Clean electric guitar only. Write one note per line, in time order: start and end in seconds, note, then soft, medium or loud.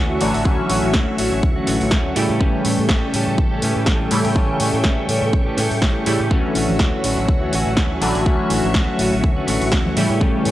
0.00 0.19 E3 medium
0.00 0.20 A3 loud
0.00 0.21 C#4 medium
0.00 0.22 F#4 medium
0.20 0.34 E3 medium
0.20 0.35 A3 medium
0.20 0.34 C#4 medium
0.20 0.33 F#4 medium
0.34 0.44 A3 medium
0.34 0.45 C#4 medium
0.34 0.45 F#4 medium
0.45 0.59 E3 medium
0.45 0.59 A3 medium
0.45 0.59 C#4 loud
0.45 0.57 F#4 medium
0.58 0.69 A3 soft
0.58 0.70 C#4 soft
0.58 0.70 F#4 medium
0.69 0.92 E3 medium
0.69 0.93 A3 medium
0.69 0.94 C#4 medium
0.69 0.94 F#4 medium
0.95 1.18 C#4 medium
0.95 1.19 F#4 medium
1.18 1.56 E3 medium
1.18 1.57 A3 medium
1.18 1.56 C#4 medium
1.18 1.55 F#4 medium
1.56 1.66 A3 medium
1.56 1.67 C#4 medium
1.56 1.67 F#4 medium
1.67 1.90 E3 medium
1.67 1.91 A3 medium
1.67 1.91 C#4 medium
1.67 1.92 F#4 medium
1.91 2.14 E3 medium
1.91 2.15 A3 medium
1.91 2.16 C#4 medium
1.91 2.17 F#4 medium
2.15 2.29 E3 medium
2.15 2.30 A3 medium
2.15 2.30 C#4 medium
2.15 2.28 G4 medium
2.29 2.40 A3 medium
2.29 2.40 C#4 medium
2.29 2.40 G4 medium
2.40 2.63 E3 medium
2.40 2.64 A3 medium
2.40 2.65 C#4 medium
2.40 2.66 G4 loud
2.64 2.88 E3 medium
2.64 2.88 A3 medium
2.64 2.89 C#4 medium
2.64 2.89 G4 medium
2.90 3.14 C#4 loud
2.90 3.15 G4 loud
3.13 3.52 E3 medium
3.13 3.52 A3 medium
3.13 3.51 C#4 medium
3.13 3.50 G4 medium
3.51 3.62 A3 medium
3.51 3.63 C#4 medium
3.51 3.62 G4 medium
3.62 3.85 E3 medium
3.62 3.86 A3 medium
3.62 3.87 C#4 medium
3.62 3.87 G4 medium
3.86 4.10 E3 medium
3.86 4.11 A3 loud
3.86 4.12 G4 medium
4.11 4.25 E3 medium
4.11 4.25 A3 medium
4.11 4.25 C#4 medium
4.11 4.23 G4 medium
4.24 4.35 A3 soft
4.24 4.35 C#4 medium
4.24 4.36 G4 medium
4.35 4.58 E3 medium
4.35 4.59 A3 medium
4.35 4.60 C#4 medium
4.35 4.61 G4 loud
4.60 4.83 E3 medium
4.60 4.84 A3 medium
4.60 4.84 C#4 medium
4.60 4.85 G4 medium
4.84 5.07 E3 medium
4.84 5.08 A3 loud
4.84 5.09 C#4 loud
4.84 5.10 G4 loud
5.08 5.47 E3 medium
5.08 5.47 A3 medium
5.08 5.47 C#4 medium
5.08 5.45 G4 medium
5.46 5.57 A3 medium
5.46 5.58 C#4 medium
5.46 5.57 G4 medium
5.57 5.80 E3 medium
5.57 5.81 A3 medium
5.57 5.82 C#4 medium
5.57 5.82 G4 medium
5.81 6.04 E3 medium
5.81 6.06 A3 medium
5.81 6.06 C#4 medium
5.81 6.07 G4 loud
6.06 6.20 E3 medium
6.06 6.20 A3 medium
6.06 6.20 C#4 medium
6.06 6.18 G4 medium
6.19 6.30 A3 soft
6.19 6.31 C#4 medium
6.19 6.31 G4 medium
6.30 6.53 E3 medium
6.30 6.54 A3 medium
6.30 6.55 C#4 loud
6.30 6.56 F#4 medium
6.54 6.78 E3 medium
6.54 6.79 A3 medium
6.54 6.79 C#4 medium
6.54 6.80 F#4 medium
6.79 7.02 E3 medium
6.79 7.03 A3 medium
6.79 7.04 C#4 medium
6.79 7.05 F#4 loud
7.03 7.42 E3 medium
7.03 7.42 A3 medium
7.03 7.42 C#4 medium
7.03 7.40 F#4 medium
7.42 7.52 A3 medium
7.42 7.53 C#4 medium
7.42 7.53 F#4 medium
7.52 7.76 E3 medium
7.52 7.76 A3 medium
7.52 7.77 C#4 medium
7.52 7.78 F#4 medium
7.77 8.00 E3 medium
7.77 8.01 A3 medium
7.77 8.02 C#4 medium
7.77 8.02 F#4 medium
8.01 8.15 E3 medium
8.01 8.16 A3 medium
8.01 8.15 C#4 medium
8.01 8.14 F#4 medium
8.15 8.25 A3 medium
8.15 8.26 C#4 medium
8.15 8.26 F#4 medium
8.26 8.49 E3 medium
8.26 8.50 A3 loud
8.26 8.50 C#4 medium
8.26 8.51 F#4 loud
8.50 8.73 E3 medium
8.50 8.74 A3 medium
8.50 8.74 C#4 medium
8.50 8.75 F#4 medium
8.74 8.98 E3 medium
8.74 8.98 A3 medium
8.74 8.99 C#4 medium
8.74 9.00 F#4 loud
8.99 9.13 E3 medium
8.99 9.13 A3 medium
8.99 9.13 C#4 medium
8.99 9.11 F#4 medium
9.12 9.38 A3 soft
9.12 9.37 C#4 soft
9.12 9.35 F#4 medium
9.37 9.47 A3 medium
9.37 9.48 C#4 medium
9.37 9.48 F#4 medium
9.47 9.71 E3 medium
9.47 9.71 A3 medium
9.47 9.72 C#4 medium
9.47 9.73 F#4 medium
9.72 9.95 E3 medium
9.72 9.96 A3 medium
9.72 9.97 C#4 loud
9.72 9.98 F#4 medium
9.96 10.10 E3 medium
9.96 10.11 A3 medium
9.96 10.10 C#4 medium
9.96 10.08 G4 medium
10.10 10.20 A3 soft
10.10 10.21 C#4 medium
10.10 10.21 G4 medium
10.21 10.44 E3 medium
10.21 10.45 A3 medium
10.21 10.46 C#4 loud
10.21 10.46 G4 loud
10.45 10.51 E3 medium
10.45 10.51 A3 medium
10.45 10.51 C#4 medium
10.45 10.51 G4 medium